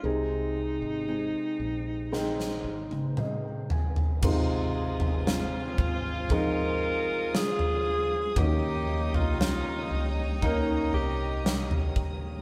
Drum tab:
CC |----------------|x---------------|----------------|
SD |--------oo------|----o-------o---|----o-------o---|
T1 |-----------o----|----------------|----------------|
T2 |------------o---|----------------|----------------|
FT |--------------oo|o--o--o-o----o--|o--o----o----o--|
BD |----------------|o-----o-o-------|o-------o-----o-|